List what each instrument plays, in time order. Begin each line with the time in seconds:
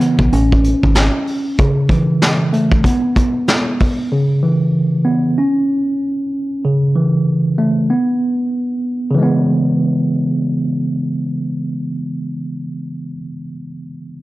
Already playing: tine electric piano C#3 E3
0.00 tine electric piano B3, closed hi-hat
0.19 fingered electric bass B1, kick
0.33 fingered electric bass A1, tine electric piano C#4, closed hi-hat
0.52 kick
0.64 closed hi-hat
0.83 fingered electric bass G#1, kick
0.95 snare, closed hi-hat
1.27 open hi-hat
1.58 tine electric piano C#3, kick, closed hi-hat
1.89 tine electric piano E3, kick, closed hi-hat
2.22 snare, closed hi-hat
2.53 tine electric piano A3, closed hi-hat
2.72 kick
2.84 tine electric piano B3, kick, closed hi-hat
3.16 kick, closed hi-hat
3.48 snare, closed hi-hat
3.80 kick, open hi-hat
4.12 tine electric piano C#3
4.43 tine electric piano E3
5.05 tine electric piano B3
5.38 tine electric piano C#4
6.65 tine electric piano C#3
6.96 tine electric piano E3
7.58 tine electric piano A3
7.90 tine electric piano B3
9.11 tine electric piano C#3 E3
9.19 tine electric piano G#3 B3